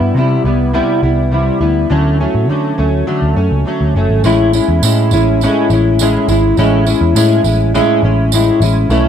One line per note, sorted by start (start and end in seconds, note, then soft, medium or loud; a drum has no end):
0.00 0.12 G2 medium
0.00 0.16 G3 soft
0.00 0.16 B3 medium
0.00 0.15 E4 medium
0.15 0.38 C3 medium
0.15 0.45 C3 medium
0.15 0.45 G3 medium
0.15 0.45 B3 medium
0.15 0.44 E4 medium
0.44 0.79 C2 medium
0.44 0.73 G3 soft
0.44 0.73 B3 soft
0.44 0.74 E4 soft
0.74 1.03 C3 medium
0.74 1.03 G3 medium
0.74 1.03 B3 medium
0.74 1.02 E4 medium
1.03 1.49 C2 medium
1.03 1.31 G3 soft
1.03 1.32 B3 medium
1.03 1.32 E4 medium
1.31 1.61 C3 medium
1.31 1.61 G3 medium
1.31 1.61 B3 medium
1.31 1.60 E4 medium
1.61 1.84 D2 medium
1.61 1.90 G3 soft
1.61 1.90 B3 medium
1.61 1.90 E4 medium
1.90 2.26 D2 medium
1.90 2.19 D3 medium
1.90 2.19 F#3 medium
1.90 2.20 A3 medium
1.90 2.19 C#4 medium
2.20 2.49 F#3 soft
2.20 2.49 A3 medium
2.20 2.49 C#4 medium
2.35 2.49 A2 medium
2.49 2.72 D3 medium
2.49 2.78 D3 medium
2.49 2.79 F#3 medium
2.49 2.78 A3 medium
2.49 2.77 C#4 medium
2.78 3.02 D2 medium
2.78 3.06 F#3 soft
2.78 3.07 A3 soft
2.78 3.07 C#4 medium
3.07 3.36 D3 medium
3.07 3.36 F#3 medium
3.07 3.37 A3 medium
3.07 3.35 C#4 medium
3.22 3.34 D2 medium
3.36 3.48 F#2 medium
3.36 3.66 F#3 soft
3.36 3.66 A3 soft
3.36 3.66 C#4 medium
3.51 3.63 C#2 medium
3.66 3.95 D3 medium
3.66 3.95 F#3 medium
3.66 3.96 A3 medium
3.66 3.95 C#4 medium
3.81 3.92 D2 medium
3.95 4.07 F#1 medium
3.95 4.24 F#3 soft
3.95 4.25 A3 soft
3.95 4.24 C#4 soft
4.09 4.21 G#1 medium
4.24 4.59 A1 loud
4.24 4.53 A2 medium
4.24 4.54 G#3 medium
4.24 4.53 C#4 medium
4.24 4.52 E4 medium
4.24 tambourine soft
4.53 4.82 G#3 soft
4.53 4.83 C#4 medium
4.53 4.83 E4 medium
4.53 tambourine soft
4.68 4.80 E2 medium
4.82 5.13 A2 loud
4.82 5.12 A2 medium
4.82 5.12 G#3 medium
4.82 5.12 C#4 medium
4.82 5.12 E4 medium
4.82 tambourine loud
5.11 5.46 A1 medium
5.11 5.42 C#4 medium
5.11 5.42 E4 medium
5.11 tambourine soft
5.15 5.42 G#3 soft
5.41 5.71 A2 medium
5.41 5.71 G#3 loud
5.41 5.71 C#4 loud
5.41 5.70 E4 medium
5.41 tambourine soft
5.70 6.17 A1 loud
5.70 6.00 G#3 soft
5.70 6.00 C#4 soft
5.70 6.00 E4 medium
5.70 tambourine soft
5.99 6.29 A2 medium
5.99 6.29 G#3 medium
5.99 6.29 C#4 medium
5.99 6.28 E4 medium
5.99 tambourine medium
6.28 6.52 G#1 loud
6.28 6.58 G#3 soft
6.28 6.58 C#4 soft
6.28 6.58 E4 medium
6.28 tambourine soft
6.57 6.93 A1 loud
6.57 6.87 A2 medium
6.57 6.87 G#3 medium
6.57 6.86 C#4 medium
6.57 6.85 E4 loud
6.57 tambourine soft
6.86 7.15 G#3 medium
6.86 7.16 C#4 medium
6.86 7.16 E4 medium
6.86 tambourine soft
7.01 7.13 E2 medium
7.15 7.45 A2 medium
7.15 7.39 A2 medium
7.15 7.45 G#3 medium
7.15 7.44 C#4 medium
7.15 7.43 E4 medium
7.15 tambourine medium
7.44 7.79 A1 medium
7.44 7.73 G#3 soft
7.44 7.74 C#4 medium
7.44 7.74 E4 medium
7.44 tambourine soft
7.74 8.03 A2 medium
7.74 8.03 G#3 medium
7.74 8.04 C#4 loud
7.74 8.02 E4 loud
7.74 tambourine soft
8.03 8.50 A1 medium
8.03 8.33 G#3 soft
8.03 8.33 C#4 medium
8.03 8.32 E4 medium
8.32 8.62 A2 medium
8.32 8.62 G#3 medium
8.32 8.62 C#4 medium
8.32 8.61 E4 medium
8.32 tambourine medium
8.61 8.84 A1 loud
8.61 8.91 C#4 medium
8.61 8.90 E4 medium
8.61 tambourine soft
8.65 8.90 G#3 soft
8.89 9.08 B1 loud
8.89 9.08 B2 medium
8.89 9.08 A3 medium
8.89 9.08 C#4 medium
8.89 9.08 E4 loud
8.89 tambourine soft